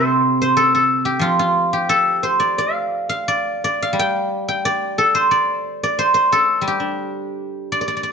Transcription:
guzheng
Already playing: C3 G3 G4 A4 C5
0.42 C5
0.57 A4
0.75 A4
1.05 G4
1.19 F3 F4
1.39 F4
1.73 G4
1.89 A4
2.23 C5
2.40 D5
2.58 F5
3.09 F5
3.28 D5
3.64 D5
3.83 F5
3.93 G3
3.99 G5
4.48 G5
4.65 D5
4.98 A4
5.15 C5
5.31 D5
5.83 D5
5.99 C5
6.14 C5
6.32 A4
6.61 G3
6.67 G4
6.80 D4
7.72 D5
7.81 D5
7.88 D5
7.97 D5
8.03 D5

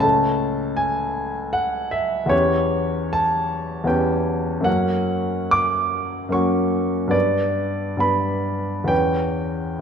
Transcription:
grand piano
Already playing: C#2
0.00 A3 C#4 A4 A5
0.77 G#5
1.53 F#5
1.91 E5
2.26 E2 B3 C#4 C#5
2.30 G4
3.13 A5
3.84 E2 B3 C#4 G5
3.89 G4
4.60 F#2 A#3 C#4 F#5
4.65 F#4
5.51 D6
6.29 F#2 A#3 C#4 C#6
6.33 F#4
7.07 G2 B3 B4 D5
7.97 G2 B3 B4 B5
8.84 E2 B3 C#4 G5
8.89 B4

